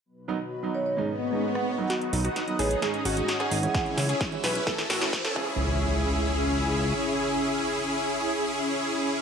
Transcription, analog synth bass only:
\new Staff \with { instrumentName = "Analog synth bass" } { \clef bass \time 4/4 \key cis \minor \tempo 4 = 130 r1 | r8 b,,8 r8 a,,8 r8 gis,,8 r8 gis,,8 | r8 cis,8 r8 b,,8 r8 a,,8 r8 cis,8~ | cis,2. r4 |
r1 | }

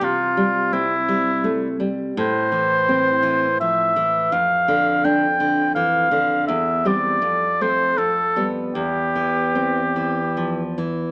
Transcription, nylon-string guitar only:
\new Staff \with { instrumentName = "Nylon-string guitar" } { \clef bass \time 3/4 \key c \major \tempo 4 = 82 c8 g8 c'8 g8 a8 g8 | a,8 e8 c'8 e8 f8 e8 | f,8 d8 d'8 d8 e8 d8 | e,8 <g c'>8 f,8 <a c'>8 f,8 <g b>8 |
e,8 e8 c'8 e8 f8 e8 | }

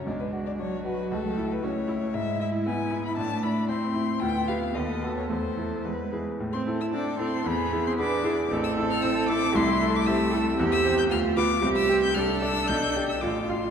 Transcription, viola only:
\new Staff \with { instrumentName = "Viola" } { \time 2/4 \key a \major \tempo 4 = 114 d'4 fis'4~ | fis'4 fis'8 e'8 | \key a \minor e'2 | d'4 c'4 |
f'8 g'8 a'4 | a'4 b'8 r8 | r16 c'8 e'16 d'8 c'8 | b8. c'16 d'4 |
c'2 | a2 | \key c \major c'4 b4 | c'4 d'4~ |
d'4 f'4 | }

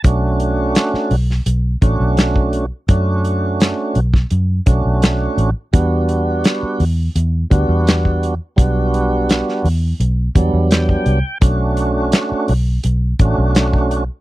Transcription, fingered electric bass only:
\new Staff \with { instrumentName = "Fingered electric bass" } { \clef bass \time 4/4 \key b \minor \tempo 4 = 84 b,,4~ b,,16 r16 b,,8 b,,8 a,,16 b,,4~ b,,16 | fis,4. b,,8 fis,8 b,,16 b,,8. a,,16 r16 | e,4~ e,16 r16 e,8 e,8 d,16 e,4~ e,16 | b,,4. e,8 b,,8 e,16 e,8. c,16 r16 |
b,,4~ b,,16 r16 b,,8 b,,8 a,,16 b,,4~ b,,16 | }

